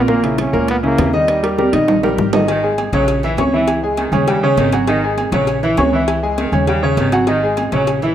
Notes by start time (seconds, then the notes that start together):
Already playing: A#1
0.08 A#2 A#3 A#4, high bongo, high conga
0.23 C#3 C#4 E4, high bongo, high timbale
0.38 C#4, high bongo, high conga, high timbale, low timbale
0.53 C#2 A#2 A#3 A#4
0.68 B3, high bongo, high conga, high timbale
0.83 C#3 A#3 C#4 E4, high bongo, high conga
0.98 D#2, high bongo, low bongo, high conga, high timbale, low timbale
1.13 D#3 G3 D#4 D#5, high bongo, high conga
1.28 high bongo, high conga, high timbale
1.43 G3 G4 A#4, high bongo, high conga, high timbale
1.58 G3 G4 A#4, high bongo, high conga, low timbale
1.73 A#1 D#3 D#4 D#5, high bongo, high conga, high timbale
1.88 high bongo, low conga, high timbale
2.03 G3 G4 A#4, low conga, high timbale
2.18 G#1, high bongo, low bongo, low conga
2.33 D#3 D#4 D#5, high bongo, low conga, low timbale
2.48 D#3 D#4 D#5, cowbell, low agogo
2.63 G#3 G#4 G#5, high conga
2.78 cowbell, high conga, low timbale, low agogo
2.93 A#1 C#3 F#3 C#4 C#5, cowbell, high conga
3.08 cowbell, high conga, low agogo
3.23 E3 E4 E5, high conga, low agogo
3.37 C#2 C#4 C#5 C#6, cowbell, high conga, low timbale, low agogo
3.53 E3 E4 E5, high conga
3.68 cowbell, high conga, low agogo
3.83 G#3 G#4 G#5
3.97 D#3, cowbell, high conga, low timbale, low agogo
4.12 D#2 C#3 C#4 C#5, high conga, low conga, low agogo
4.27 C#3 G3 G4 G5, cowbell, high conga, low conga, low agogo
4.43 C#3 C#4 C#5, high conga
4.57 G#1 D#3, cowbell, high conga, low timbale, low agogo
4.72 F#3 F#4 F#5, cowbell, high conga, low agogo
4.87 D#3 D#4 D#5, cowbell, high conga, low agogo
5.03 G#3 G#4 G#5
5.17 cowbell, high conga, low timbale, low agogo
5.32 A#1 C#3 F#3 C#4 C#5, cowbell, high conga
5.47 cowbell, high conga, low agogo
5.63 E3 E4 E5, high conga, low agogo
5.77 C#2 C#4 C#5 C#6, cowbell, high conga, low timbale, low agogo
5.93 E3 E4 E5
6.08 cowbell, low agogo
6.23 G#3 G#4 G#5
6.38 D#3, cowbell, high conga, low timbale, low agogo
6.52 D#2 C#3 C#4 C#5, high conga, low conga, low agogo
6.67 C#3 G3 G4 G5, cowbell, low agogo
6.83 C#3 C#4 C#5, high conga
6.97 G#1 D#3, cowbell, high conga, low timbale, low agogo
7.12 F#3 F#4 F#5, cowbell, high conga, low agogo
7.27 D#3 D#4 D#5, cowbell, high conga, low agogo
7.43 G#3 G#4 G#5
7.57 cowbell, high conga, low timbale, low agogo
7.72 A#1 C#3 F#3 C#4 C#5, cowbell, high conga
7.87 cowbell, high conga, low agogo
8.02 E3 E4 E5, high conga, low agogo